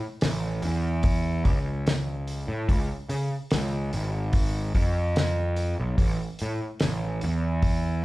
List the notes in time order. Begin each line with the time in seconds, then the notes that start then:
0.21 A1, snare, open hi-hat
0.62 E2, open hi-hat
1.03 kick, open hi-hat
1.45 C#2, kick, open hi-hat
1.87 snare, open hi-hat
2.27 open hi-hat
2.48 A2
2.69 C#2, kick, open hi-hat
3.09 C#3, open hi-hat
3.51 C#2, snare, open hi-hat
3.93 G#1, open hi-hat
4.33 kick, open hi-hat
4.75 F2, kick, open hi-hat
5.16 snare, open hi-hat
5.56 open hi-hat
5.80 B1
5.98 A1, kick, open hi-hat
6.39 A2, open hi-hat
6.80 A1, snare, open hi-hat
7.21 E2, open hi-hat
7.62 kick, open hi-hat